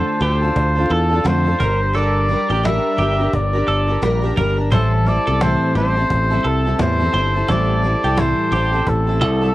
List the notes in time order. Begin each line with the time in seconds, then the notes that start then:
Already playing: D3 A3 D4 F4 A4 C5
0.08 cajon slap
0.20 D2 A3 D4 F4 G4 A4 C5
0.41 D4 F4 A4, cajon slap
0.56 D2, cajon bass
0.75 D4 F4 A4, cajon slap
0.90 E2 A4
1.10 D4 F4 A4
1.24 F2 D3 A3 D4 F4 A4 C5, cajon slap
1.45 D4 F4 A4, cajon slap
1.59 G1 G3 D4 G4 A#4, cajon bass
1.81 cajon slap
1.93 G3 D4 G4 A4 A#4 D5
2.16 cajon slap
2.28 G3 D4 G4 A#4, cajon slap
2.49 A1 D4 G4 A#4
2.63 G3 D4 G4 A#4 E5, cajon slap
2.86 cajon slap
2.97 G1 G3 D4 G4 A#4
3.18 D4 G4 A#4, cajon slap
3.33 G1 D5, cajon bass
3.53 D4 G4 A#4, cajon slap
3.67 G1 A4
3.87 D4 G4 A#4, cajon slap
4.02 A#1 G3 D4 G4 A#4, cajon slap
4.22 D4 G4 A#4, cajon slap
4.36 G1 G3 D4 G4 A#4, cajon bass
4.56 D4 G4 A#4, cajon slap
4.71 A1 A2 E3 G3 C4 E4 A4 C5, cajon bass
4.93 cajon slap
5.05 G3 C4 E4 A4 D5
5.26 C2 G3 C4 E4 A4
5.40 A2 E3 G3 C4 E4 A4 C5, cajon slap
5.63 cajon slap
5.75 A1 G3 C4 E4 G4 A4 C5
5.95 G3 C4 E4 A4, cajon slap
6.10 A1, cajon bass
6.30 G3 C4 E4 A4, cajon slap
6.44 C2 A4
6.65 G3 C4 E4 A4, cajon slap
6.79 E2 A2 E3 G3 C4 E4 A4 C5, cajon slap
7.00 G3 C4 E4 A4, cajon slap
7.14 G1 G3 C4 E4 A4 C5
7.34 G3 C4 E4 A4, cajon slap
7.48 A1 A2 E3 G3 C4 E4 A4 D5, cajon bass
7.69 cajon slap
7.82 G3 C4 E4 A4
8.03 C2 G3 C4 E4 G4 A4
8.16 A2 E3 G3 C4 E4 A4 C5, cajon slap
8.39 cajon slap
8.52 A1 G3 C4 E4 G4 A4
8.72 G3 C4 E4 A4
8.87 A1 A4, cajon bass
9.07 G3 C4 E4 A4, cajon slap
9.21 C2 A4, cajon bass
9.41 G3 C4 E4 A4, cajon slap